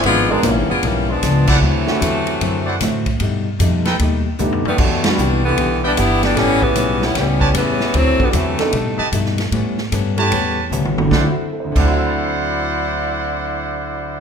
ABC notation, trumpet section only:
X:1
M:4/4
L:1/8
Q:"Swing" 1/4=152
K:Dmix
V:1 name="Trumpet section"
z6 z [Ecdf] | z4 z [Ecdf] z2 | z3 [^DABg] z4 | z4 z [EBdg] z2 |
z4 z [GB^ca] z2 | z4 z [GB^da] z2 | z3 [GB^ca]3 z2 | [Ecdf] z2 [Ecdf]4- [Ecdf]- |
[Ecdf]8 |]